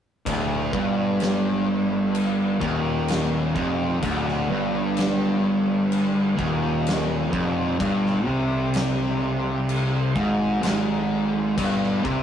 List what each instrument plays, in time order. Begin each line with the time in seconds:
0.26 picked electric bass D1, distorted electric guitar D2, kick, crash
0.73 picked electric bass G1, distorted electric guitar G2, kick
1.20 snare, crash
2.15 crash
2.59 picked electric bass D#1, distorted electric guitar D#2, kick
3.08 snare, crash
3.54 picked electric bass F1, distorted electric guitar F2, kick
4.01 picked electric bass D1, distorted electric guitar D2, kick, crash
4.29 snare
4.49 picked electric bass G1, distorted electric guitar G2
4.97 snare, crash
5.92 crash
6.36 picked electric bass D#1, distorted electric guitar D#2, kick
6.87 snare, crash
7.31 picked electric bass F1, distorted electric guitar F2, kick
7.79 picked electric bass G1, distorted electric guitar G2, kick, crash
8.06 snare
8.25 picked electric bass C2, distorted electric guitar C3
8.74 snare, crash
9.69 crash
10.15 picked electric bass G#1, distorted electric guitar G#2, kick
10.62 picked electric bass G#1, distorted electric guitar G#2, snare, crash
11.57 picked electric bass G1, distorted electric guitar G2, kick, crash
11.84 snare
12.04 picked electric bass C2, distorted electric guitar C3, kick